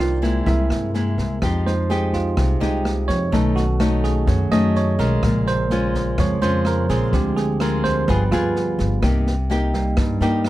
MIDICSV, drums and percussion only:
0, 0, Header, 1, 2, 480
1, 0, Start_track
1, 0, Key_signature, -4, "minor"
1, 0, Tempo, 475813
1, 1435, Time_signature, 4, 2, 24, 8
1, 10586, End_track
2, 0, Start_track
2, 0, Title_t, "Drums"
2, 0, Note_on_c, 9, 37, 60
2, 96, Note_off_c, 9, 37, 0
2, 228, Note_on_c, 9, 36, 21
2, 232, Note_on_c, 9, 38, 22
2, 329, Note_off_c, 9, 36, 0
2, 333, Note_off_c, 9, 38, 0
2, 467, Note_on_c, 9, 38, 24
2, 468, Note_on_c, 9, 36, 62
2, 568, Note_off_c, 9, 38, 0
2, 569, Note_off_c, 9, 36, 0
2, 709, Note_on_c, 9, 37, 53
2, 709, Note_on_c, 9, 38, 22
2, 810, Note_off_c, 9, 37, 0
2, 810, Note_off_c, 9, 38, 0
2, 949, Note_on_c, 9, 38, 22
2, 1049, Note_off_c, 9, 38, 0
2, 1191, Note_on_c, 9, 36, 24
2, 1193, Note_on_c, 9, 38, 24
2, 1292, Note_off_c, 9, 36, 0
2, 1293, Note_off_c, 9, 38, 0
2, 1431, Note_on_c, 9, 37, 66
2, 1431, Note_on_c, 9, 38, 23
2, 1433, Note_on_c, 9, 36, 65
2, 1532, Note_off_c, 9, 37, 0
2, 1532, Note_off_c, 9, 38, 0
2, 1534, Note_off_c, 9, 36, 0
2, 1680, Note_on_c, 9, 38, 24
2, 1781, Note_off_c, 9, 38, 0
2, 1919, Note_on_c, 9, 38, 25
2, 2020, Note_off_c, 9, 38, 0
2, 2150, Note_on_c, 9, 38, 23
2, 2153, Note_on_c, 9, 36, 23
2, 2251, Note_off_c, 9, 38, 0
2, 2254, Note_off_c, 9, 36, 0
2, 2392, Note_on_c, 9, 37, 68
2, 2392, Note_on_c, 9, 38, 26
2, 2394, Note_on_c, 9, 36, 67
2, 2493, Note_off_c, 9, 37, 0
2, 2493, Note_off_c, 9, 38, 0
2, 2495, Note_off_c, 9, 36, 0
2, 2641, Note_on_c, 9, 38, 24
2, 2742, Note_off_c, 9, 38, 0
2, 2878, Note_on_c, 9, 37, 55
2, 2878, Note_on_c, 9, 38, 24
2, 2979, Note_off_c, 9, 37, 0
2, 2979, Note_off_c, 9, 38, 0
2, 3115, Note_on_c, 9, 36, 25
2, 3118, Note_on_c, 9, 38, 26
2, 3216, Note_off_c, 9, 36, 0
2, 3219, Note_off_c, 9, 38, 0
2, 3355, Note_on_c, 9, 36, 62
2, 3360, Note_on_c, 9, 38, 26
2, 3456, Note_off_c, 9, 36, 0
2, 3461, Note_off_c, 9, 38, 0
2, 3596, Note_on_c, 9, 38, 23
2, 3697, Note_off_c, 9, 38, 0
2, 3834, Note_on_c, 9, 37, 66
2, 3834, Note_on_c, 9, 38, 26
2, 3934, Note_off_c, 9, 37, 0
2, 3934, Note_off_c, 9, 38, 0
2, 4072, Note_on_c, 9, 38, 25
2, 4073, Note_on_c, 9, 36, 23
2, 4172, Note_off_c, 9, 38, 0
2, 4174, Note_off_c, 9, 36, 0
2, 4311, Note_on_c, 9, 38, 28
2, 4313, Note_on_c, 9, 36, 64
2, 4411, Note_off_c, 9, 38, 0
2, 4414, Note_off_c, 9, 36, 0
2, 4557, Note_on_c, 9, 37, 56
2, 4557, Note_on_c, 9, 38, 23
2, 4658, Note_off_c, 9, 37, 0
2, 4658, Note_off_c, 9, 38, 0
2, 4795, Note_on_c, 9, 38, 21
2, 4896, Note_off_c, 9, 38, 0
2, 5033, Note_on_c, 9, 36, 25
2, 5035, Note_on_c, 9, 38, 25
2, 5134, Note_off_c, 9, 36, 0
2, 5136, Note_off_c, 9, 38, 0
2, 5274, Note_on_c, 9, 36, 65
2, 5275, Note_on_c, 9, 37, 64
2, 5275, Note_on_c, 9, 38, 27
2, 5375, Note_off_c, 9, 36, 0
2, 5376, Note_off_c, 9, 37, 0
2, 5376, Note_off_c, 9, 38, 0
2, 5515, Note_on_c, 9, 38, 25
2, 5615, Note_off_c, 9, 38, 0
2, 5752, Note_on_c, 9, 38, 25
2, 5853, Note_off_c, 9, 38, 0
2, 5995, Note_on_c, 9, 36, 25
2, 5999, Note_on_c, 9, 38, 26
2, 6096, Note_off_c, 9, 36, 0
2, 6100, Note_off_c, 9, 38, 0
2, 6234, Note_on_c, 9, 36, 65
2, 6235, Note_on_c, 9, 37, 67
2, 6235, Note_on_c, 9, 38, 27
2, 6335, Note_off_c, 9, 36, 0
2, 6336, Note_off_c, 9, 37, 0
2, 6336, Note_off_c, 9, 38, 0
2, 6474, Note_on_c, 9, 38, 24
2, 6575, Note_off_c, 9, 38, 0
2, 6708, Note_on_c, 9, 37, 50
2, 6708, Note_on_c, 9, 38, 23
2, 6809, Note_off_c, 9, 37, 0
2, 6809, Note_off_c, 9, 38, 0
2, 6954, Note_on_c, 9, 36, 25
2, 6956, Note_on_c, 9, 38, 27
2, 7054, Note_off_c, 9, 36, 0
2, 7057, Note_off_c, 9, 38, 0
2, 7190, Note_on_c, 9, 38, 25
2, 7193, Note_on_c, 9, 36, 68
2, 7291, Note_off_c, 9, 38, 0
2, 7293, Note_off_c, 9, 36, 0
2, 7430, Note_on_c, 9, 38, 23
2, 7531, Note_off_c, 9, 38, 0
2, 7669, Note_on_c, 9, 37, 63
2, 7669, Note_on_c, 9, 38, 26
2, 7770, Note_off_c, 9, 37, 0
2, 7770, Note_off_c, 9, 38, 0
2, 7911, Note_on_c, 9, 36, 25
2, 7912, Note_on_c, 9, 38, 27
2, 8012, Note_off_c, 9, 36, 0
2, 8012, Note_off_c, 9, 38, 0
2, 8151, Note_on_c, 9, 38, 25
2, 8152, Note_on_c, 9, 36, 62
2, 8252, Note_off_c, 9, 38, 0
2, 8253, Note_off_c, 9, 36, 0
2, 8394, Note_on_c, 9, 37, 59
2, 8394, Note_on_c, 9, 38, 23
2, 8494, Note_off_c, 9, 37, 0
2, 8494, Note_off_c, 9, 38, 0
2, 8632, Note_on_c, 9, 38, 22
2, 8733, Note_off_c, 9, 38, 0
2, 8867, Note_on_c, 9, 38, 25
2, 8868, Note_on_c, 9, 36, 27
2, 8968, Note_off_c, 9, 38, 0
2, 8969, Note_off_c, 9, 36, 0
2, 9105, Note_on_c, 9, 37, 68
2, 9105, Note_on_c, 9, 38, 26
2, 9109, Note_on_c, 9, 36, 67
2, 9206, Note_off_c, 9, 37, 0
2, 9206, Note_off_c, 9, 38, 0
2, 9209, Note_off_c, 9, 36, 0
2, 9349, Note_on_c, 9, 38, 25
2, 9450, Note_off_c, 9, 38, 0
2, 9586, Note_on_c, 9, 38, 24
2, 9687, Note_off_c, 9, 38, 0
2, 9821, Note_on_c, 9, 38, 25
2, 9825, Note_on_c, 9, 36, 25
2, 9922, Note_off_c, 9, 38, 0
2, 9926, Note_off_c, 9, 36, 0
2, 10057, Note_on_c, 9, 37, 69
2, 10057, Note_on_c, 9, 38, 27
2, 10063, Note_on_c, 9, 36, 70
2, 10158, Note_off_c, 9, 37, 0
2, 10158, Note_off_c, 9, 38, 0
2, 10164, Note_off_c, 9, 36, 0
2, 10299, Note_on_c, 9, 38, 23
2, 10400, Note_off_c, 9, 38, 0
2, 10537, Note_on_c, 9, 37, 54
2, 10537, Note_on_c, 9, 38, 21
2, 10586, Note_off_c, 9, 37, 0
2, 10586, Note_off_c, 9, 38, 0
2, 10586, End_track
0, 0, End_of_file